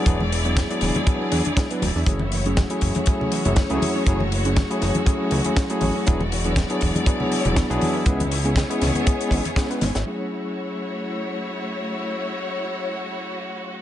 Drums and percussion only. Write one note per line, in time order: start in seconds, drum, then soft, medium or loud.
0.06 kick loud
0.06 closed hi-hat medium
0.20 high conga medium
0.32 open hi-hat loud
0.45 closed hi-hat soft
0.57 kick loud
0.57 snare loud
0.57 closed hi-hat medium
0.57 high conga medium
0.71 closed hi-hat soft
0.81 snare soft
0.81 open hi-hat loud
0.81 low conga medium
0.95 closed hi-hat medium
0.95 high conga loud
1.07 kick loud
1.07 closed hi-hat medium
1.32 open hi-hat loud
1.45 closed hi-hat medium
1.45 high conga medium
1.57 kick loud
1.57 snare loud
1.57 closed hi-hat medium
1.71 closed hi-hat soft
1.82 open hi-hat loud
1.82 high conga medium
2.06 kick loud
2.06 closed hi-hat medium
2.19 high conga medium
2.32 open hi-hat loud
2.46 closed hi-hat medium
2.57 kick loud
2.57 snare loud
2.57 closed hi-hat medium
2.57 high conga medium
2.70 closed hi-hat medium
2.81 kick medium
2.81 open hi-hat medium
2.95 closed hi-hat medium
2.95 high conga medium
3.06 kick loud
3.06 closed hi-hat medium
3.21 low conga medium
3.32 open hi-hat loud
3.45 closed hi-hat medium
3.45 high conga medium
3.45 low conga medium
3.56 kick loud
3.56 snare loud
3.56 closed hi-hat medium
3.70 closed hi-hat soft
3.82 open hi-hat loud
3.82 high conga medium
4.07 kick loud
4.07 closed hi-hat medium
4.20 high conga medium
4.32 open hi-hat medium
4.45 closed hi-hat medium
4.56 kick loud
4.56 snare loud
4.56 closed hi-hat medium
4.56 high conga medium
4.71 closed hi-hat soft
4.81 snare soft
4.81 open hi-hat medium
4.95 closed hi-hat medium
4.95 high conga medium
5.06 kick loud
5.06 closed hi-hat medium
5.31 open hi-hat loud
5.44 closed hi-hat medium
5.44 high conga medium
5.57 kick loud
5.57 snare loud
5.57 closed hi-hat medium
5.70 closed hi-hat medium
5.81 open hi-hat medium
5.81 high conga medium
6.06 kick loud
6.06 closed hi-hat loud
6.21 high conga medium
6.32 open hi-hat loud
6.44 closed hi-hat medium
6.56 kick loud
6.56 snare loud
6.56 closed hi-hat medium
6.56 high conga medium
6.70 closed hi-hat soft
6.81 kick medium
6.81 open hi-hat medium
6.95 closed hi-hat medium
6.95 high conga medium
7.06 kick loud
7.06 closed hi-hat medium
7.20 low conga medium
7.32 open hi-hat loud
7.45 closed hi-hat medium
7.45 high conga medium
7.45 low conga medium
7.56 kick loud
7.56 snare loud
7.56 closed hi-hat medium
7.71 closed hi-hat soft
7.81 open hi-hat medium
7.81 high conga medium
8.06 kick loud
8.06 closed hi-hat medium
8.20 closed hi-hat medium
8.20 high conga medium
8.32 open hi-hat loud
8.45 closed hi-hat soft
8.56 kick loud
8.56 snare loud
8.56 closed hi-hat medium
8.56 high conga medium
8.71 closed hi-hat medium
8.82 snare soft
8.82 open hi-hat medium
8.82 low conga medium
8.95 closed hi-hat medium
8.95 high conga medium
9.07 kick loud
9.07 closed hi-hat medium
9.21 closed hi-hat medium
9.31 kick medium
9.31 open hi-hat loud
9.45 closed hi-hat medium
9.45 high conga medium
9.56 kick loud
9.56 snare loud
9.56 closed hi-hat medium
9.71 closed hi-hat medium
9.81 snare medium
9.81 open hi-hat loud
9.81 high conga medium
9.95 snare medium
9.95 closed hi-hat medium
10.82 cabasa medium
11.32 cabasa medium
12.82 cabasa medium
13.32 cabasa medium
13.57 cabasa medium